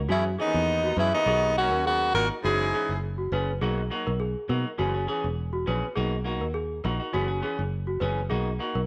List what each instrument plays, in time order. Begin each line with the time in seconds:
0.09 baritone saxophone E2, fingered electric bass F#2, clean electric guitar E3 B3 C#4 G#4, trumpet C#4, tenor saxophone E4, celesta F#4
0.38 baritone saxophone D#2, clean electric guitar E3 B3 C#4 G#4, tenor saxophone D#4, celesta G#4
0.42 trumpet B3
0.54 fingered electric bass E2
0.84 celesta F#4
0.96 baritone saxophone E2, fingered electric bass F#2, clean electric guitar E3 B3 C#4 G#4, tenor saxophone E4, celesta B4
1.01 trumpet C#4
1.12 baritone saxophone D#2, tenor saxophone D#4
1.16 trumpet B3
1.26 fingered electric bass B1, clean electric guitar A#3 D#4 F#4, celesta G#4
1.56 baritone saxophone F#2, clean electric guitar A#3 D#4 F#4, trumpet C#4, tenor saxophone F#4
1.71 fingered electric bass D#2, celesta A#4
1.85 baritone saxophone F#2, trumpet B3, tenor saxophone F#4, celesta G#4
2.14 fingered electric bass G#1, baritone saxophone A#2, clean electric guitar A#3 D#4 F#4, trumpet F#4, celesta A#4, tenor saxophone A#4
2.43 fingered electric bass F#1, baritone saxophone G#2, clean electric guitar E3 B3 C#4 G#4, trumpet E4, celesta F#4, tenor saxophone G#4
2.73 clean electric guitar E3 B3 C#4 G#4, celesta G#4
2.89 fingered electric bass F#1
3.18 celesta F#4
3.32 fingered electric bass F#1, clean electric guitar B3 C#4 G#4, celesta B4
3.61 fingered electric bass B1, clean electric guitar F#3 A#3 D#4 F#4, celesta G#4
3.90 clean electric guitar F#3 A#3 D#4 F#4
4.07 fingered electric bass B1, celesta A#4
4.20 celesta G#4
4.48 fingered electric bass B2, clean electric guitar F#3 A#3 D#4 F#4, celesta A#4
4.78 fingered electric bass F#1, clean electric guitar E3 B3 C#4 G#4, celesta F#4
4.94 clean electric guitar B3 C#4 G#4
5.07 clean electric guitar E3 B3 C#4 G#4, celesta G#4
5.24 fingered electric bass E1
5.53 celesta F#4
5.66 fingered electric bass A#1, clean electric guitar E3 B3 C#4 G#4, celesta B4
5.96 fingered electric bass B1, clean electric guitar A#3 D#4 F#4, celesta G#4
6.24 clean electric guitar A#3 D#4 F#4
6.41 fingered electric bass D#2, celesta A#4
6.54 celesta G#4
6.84 fingered electric bass A#1, clean electric guitar A#3 D#4 F#4, celesta A#4
7.00 clean electric guitar D#4 F#4
7.13 fingered electric bass F#1, clean electric guitar E3 B3 C#4 G#4, celesta F#4
7.28 clean electric guitar B3 C#4 G#4
7.42 clean electric guitar E3 B3 C#4 G#4, celesta G#4
7.59 fingered electric bass F#1
7.87 celesta F#4
8.00 fingered electric bass F#1, clean electric guitar E3 B3 C#4 G#4, celesta B4
8.30 fingered electric bass B1, clean electric guitar A#3 D#4 F#4, celesta G#4
8.59 clean electric guitar A#3 D#4 F#4
8.75 fingered electric bass B1, celesta A#4